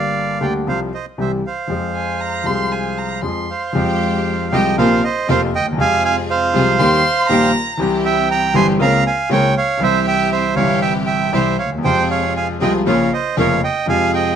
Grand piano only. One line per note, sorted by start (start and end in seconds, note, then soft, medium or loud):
0.00 0.38 G1 medium
0.00 0.38 G2 medium
0.00 0.37 D3 medium
0.00 0.38 G3 medium
0.00 0.39 A#3 medium
0.00 0.39 G4 medium
0.41 0.63 D2 medium
0.41 0.63 D3 medium
0.41 0.63 G3 medium
0.41 0.63 A#3 medium
0.41 0.63 G4 medium
0.67 0.89 C2 medium
0.67 0.89 C3 medium
0.67 0.89 F3 medium
0.67 0.89 G3 medium
0.67 0.89 C4 medium
0.67 0.89 G4 medium
1.18 1.40 C2 medium
1.18 1.40 C3 medium
1.18 1.40 E3 medium
1.18 1.40 G3 medium
1.18 1.40 C4 medium
1.18 1.40 G4 medium
1.68 2.42 F2 medium
1.68 2.42 F3 medium
1.68 2.42 G#3 medium
1.68 2.43 C4 medium
1.72 2.44 G#4 medium
2.44 3.19 C2 medium
2.44 3.19 C3 medium
2.44 3.18 F3 medium
2.44 3.19 G#3 medium
2.44 3.20 C4 medium
2.48 3.21 G#4 medium
3.22 3.45 F2 medium
3.22 3.45 F3 medium
3.22 3.45 G#3 medium
3.22 3.45 C4 medium
3.22 3.45 G#4 medium
3.73 4.48 F2 medium
3.73 3.74 F3 medium
3.73 4.48 F3 medium
3.73 4.48 G#3 medium
3.73 4.48 C4 medium
3.77 4.49 G4 medium
4.52 4.74 C2 loud
4.52 4.74 C3 medium
4.52 4.73 F3 medium
4.52 4.74 G#3 medium
4.52 4.73 C4 medium
4.52 4.74 G4 medium
4.78 4.99 A#1 loud
4.78 4.99 A#2 loud
4.78 4.99 C3 loud
4.78 4.99 F3 medium
4.78 4.99 A#3 medium
4.78 4.99 F4 loud
5.29 5.50 F1 medium
5.29 5.50 F2 loud
5.29 5.50 C3 medium
5.29 5.50 F3 medium
5.29 5.50 A#3 medium
5.29 5.50 F4 medium
5.59 5.66 D2 medium
5.65 5.72 D#2 medium
5.73 5.79 E2 medium
5.73 6.49 C3 medium
5.77 6.50 F2 medium
5.77 6.50 F3 medium
5.77 6.50 G#3 medium
5.77 6.51 F4 medium
6.54 6.75 C2 loud
6.54 6.75 C3 loud
6.54 6.75 F3 medium
6.54 6.75 G#3 medium
6.54 6.75 F4 medium
6.79 7.00 D#2 loud
6.79 7.00 D#3 loud
6.79 7.00 G3 medium
6.79 7.00 A#3 medium
6.79 7.01 G4 loud
7.29 7.51 A#1 loud
7.29 7.50 A#2 loud
7.29 7.50 D#3 medium
7.29 7.50 G3 medium
7.29 7.50 A#3 medium
7.29 7.51 G4 medium
7.77 8.51 C2 loud
7.77 8.51 C3 loud
7.77 8.50 E3 medium
7.77 8.51 G3 medium
7.77 8.51 C4 medium
7.81 8.52 G4 loud
8.54 8.75 G1 loud
8.54 8.75 G2 loud
8.54 8.75 E3 medium
8.54 8.76 G3 medium
8.54 8.75 C4 medium
8.54 8.76 G4 loud
8.79 9.01 C#2 loud
8.79 9.01 C#3 loud
8.79 9.01 A#3 medium
8.79 9.01 C4 medium
8.79 9.01 F4 loud
9.30 9.51 C#2 medium
9.30 9.51 C#3 medium
9.30 9.51 A#3 medium
9.30 9.51 C4 medium
9.30 9.51 F4 medium
9.77 10.52 C2 medium
9.77 9.79 C3 medium
9.77 10.52 C3 loud
9.77 10.52 E3 medium
9.77 10.52 G3 medium
9.81 10.53 E4 medium
10.55 11.29 G1 medium
10.55 11.29 G2 loud
10.55 11.28 C3 medium
10.55 11.29 E3 medium
10.55 11.29 G3 medium
10.55 11.30 E4 medium
11.32 11.54 C2 medium
11.32 11.54 C3 medium
11.32 11.54 E3 medium
11.32 11.54 G3 medium
11.32 11.54 E4 medium
11.65 11.71 D2 medium
11.72 11.78 D#2 medium
11.78 11.84 E2 medium
11.83 12.57 F2 medium
11.83 12.56 C3 medium
11.83 12.57 F3 medium
11.83 12.57 G#3 medium
11.83 12.58 F4 medium
12.61 12.82 C2 loud
12.61 12.82 C3 loud
12.61 12.82 F3 medium
12.61 12.82 G#3 medium
12.61 12.82 F4 medium
12.86 13.07 A#1 loud
12.86 13.07 A#2 loud
12.86 13.07 C#3 medium
12.86 13.07 F3 medium
12.86 13.08 A#3 medium
12.86 13.07 F4 loud
13.37 13.58 F1 medium
13.37 13.58 F2 medium
13.37 13.58 C#3 medium
13.37 13.58 F3 medium
13.37 13.58 A#3 medium
13.37 13.58 F4 medium
13.86 14.36 F2 medium
13.86 14.36 C3 medium
13.86 14.36 F3 medium
13.86 14.36 G#3 medium
13.90 14.36 F4 medium